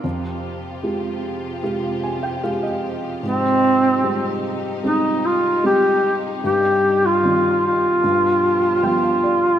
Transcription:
Already playing: string section C3
0.04 felt piano F2, string section F3 F4 G4
0.83 felt piano G#3 F4 G4
1.63 felt piano G#3 F4 G4
2.03 felt piano G#5
2.23 felt piano G5
2.43 felt piano G#3 F4 G4 F5
2.63 felt piano D#5
3.23 felt piano G#2, duduk C4, string section D#4
4.03 felt piano G3 G#3 C4
4.83 felt piano G3 G#3 C4, duduk D#4
5.26 duduk F4
5.63 felt piano G3 G#3 C4, duduk G4
6.43 string section G2 G3, felt piano G2, duduk G4
7.06 duduk F4
7.23 felt piano D#3 G3 C4
7.66 duduk F4
8.04 felt piano G2, string section B2 F3 D4 G4
8.83 felt piano F3 G3 B3 G5, duduk F4
9.03 felt piano F5
9.24 felt piano D5

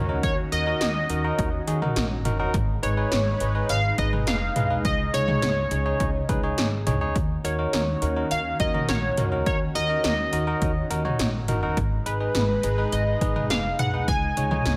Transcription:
Already playing: upright bass C#2, analog synth pad D#3 C#4 F#4, analog polysynth C#5, downlifter
0.09 tine electric piano D#4 F#4 A#4
0.23 upright bass D#2, analog polysynth C#5, kick, closed hi-hat
0.52 upright bass D#2, tine electric piano D#4 F#4 A#4, analog polysynth D#5, closed hi-hat
0.67 tine electric piano D#4 F#4 A#4
0.81 upright bass D#2, snare, closed hi-hat
1.10 upright bass D#2, tine electric piano D#4 F#4 A#4, closed hi-hat
1.24 tine electric piano D#4 F#4 A#4
1.39 upright bass D#2, kick, closed hi-hat
1.67 upright bass D#2, tine electric piano D#4 F#4 G#4, closed hi-hat
1.82 tine electric piano D#4 F#4 A#4, mid tom
1.96 upright bass A#1, snare, closed hi-hat
2.25 upright bass F#1, tine electric piano D#4 F#4 A#4, closed hi-hat, mid tom
2.40 tine electric piano D#4 F#4 A#4
2.54 upright bass G#1, analog synth pad G#3 D#4 B4, kick, closed hi-hat
2.83 upright bass G#1, tine electric piano D#4 G#4 B4, analog polysynth C#5, closed hi-hat
2.97 tine electric piano D#4 G#4 B4
3.12 upright bass G#1, snare, closed hi-hat
3.40 upright bass G#1, tine electric piano D#4 G#4 B4, closed hi-hat
3.55 tine electric piano D#4 G#4 B4
3.69 upright bass G#1, analog polysynth F5, closed hi-hat
3.98 upright bass G#1, tine electric piano D#4 G#4 B4, analog polysynth D#5, kick, closed hi-hat
4.13 tine electric piano D#4 G#4 B4, mid tom
4.27 upright bass F1, analog polysynth F5, snare, closed hi-hat
4.56 upright bass B1, tine electric piano D#4 G#4 B4, closed hi-hat, mid tom
4.70 tine electric piano D#4 G#4 B4
4.85 upright bass C#2, analog synth pad C#3, analog polysynth D#5, kick, closed hi-hat
5.14 upright bass C#2, tine electric piano D#4 G#4 C#5, analog polysynth C#5, closed hi-hat
5.28 tine electric piano D#4 G#4 C#5, mid tom
5.42 upright bass C#2, snare, closed hi-hat
5.71 upright bass C#2, tine electric piano D#4 G#4 C#5, closed hi-hat
5.86 tine electric piano D#4 G#4 C#5
6.00 upright bass C#2, kick, closed hi-hat
6.29 upright bass C#2, tine electric piano D#4 G#4 B4, kick, closed hi-hat
6.43 tine electric piano D#4 G#4 C#5
6.58 upright bass G#1, snare, closed hi-hat
6.87 upright bass C#2, tine electric piano D#4 G#4 C#5, closed hi-hat, mid tom
7.01 tine electric piano D#4 G#4 C#5
7.16 upright bass D#2, analog synth pad D#3 C#4 F#4, kick, closed hi-hat
7.44 upright bass D#2, tine electric piano D#4 F#4 A#4, analog polysynth C#5, closed hi-hat
7.59 tine electric piano D#4 F#4 A#4
7.73 upright bass D#2, snare, closed hi-hat
8.02 upright bass D#2, tine electric piano D#4 F#4 A#4, closed hi-hat
8.16 tine electric piano D#4 F#4 A#4
8.31 upright bass D#2, analog polysynth F5, closed hi-hat
8.60 upright bass D#2, tine electric piano D#4 F#4 A#4, analog polysynth D#5, kick, closed hi-hat
8.74 tine electric piano D#4 F#4 A#4, mid tom
8.89 upright bass A#1, analog polysynth C#5, snare, closed hi-hat
9.17 upright bass C#2, tine electric piano D#4 F#4 A#4, closed hi-hat, mid tom
9.32 tine electric piano D#4 F#4 A#4
9.46 upright bass D#2, analog polysynth C#5, kick, closed hi-hat
9.75 upright bass D#2, tine electric piano D#4 F#4 A#4, analog polysynth D#5, closed hi-hat
9.89 tine electric piano D#4 F#4 A#4
10.04 upright bass D#2, snare, closed hi-hat
10.33 upright bass D#2, tine electric piano D#4 F#4 A#4, closed hi-hat
10.47 tine electric piano D#4 F#4 A#4
10.62 upright bass D#2, kick, closed hi-hat
10.90 upright bass D#2, tine electric piano D#4 F#4 A#4, closed hi-hat
11.05 tine electric piano D#4 F#4 C#5, mid tom
11.19 upright bass A#1, snare, closed hi-hat
11.48 upright bass F#1, tine electric piano D#4 F#4 A#4, closed hi-hat, mid tom
11.63 tine electric piano D#4 F#4 A#4
11.77 upright bass G#1, analog synth pad G#3 D#4 B4, kick, closed hi-hat
12.06 upright bass G#1, tine electric piano D#4 G#4 B4, analog polysynth B4, closed hi-hat
12.20 tine electric piano D#4 G#4 B4
12.35 upright bass G#1, snare, closed hi-hat
12.63 upright bass G#1, tine electric piano D#4 G#4 B4, closed hi-hat
12.78 tine electric piano D#4 G#4 B4
12.92 upright bass G#1, analog polysynth D#5, closed hi-hat
13.21 upright bass G#1, tine electric piano D#4 G#4 B4, kick, closed hi-hat
13.36 tine electric piano D#4 G#4 B4, mid tom
13.50 upright bass F1, analog polysynth F5, snare, closed hi-hat
13.79 upright bass B1, tine electric piano D#4 G#4 B4, analog polysynth F#5, closed hi-hat, mid tom
13.94 tine electric piano D#4 G#4 B4
14.08 upright bass C#2, analog synth pad C#3 G#3, analog polysynth G#5, kick, closed hi-hat
14.37 upright bass C#2, tine electric piano D#4 G#4 C#5, closed hi-hat
14.51 tine electric piano D#4 G#4 C#5, mid tom
14.66 upright bass C#2, snare, closed hi-hat

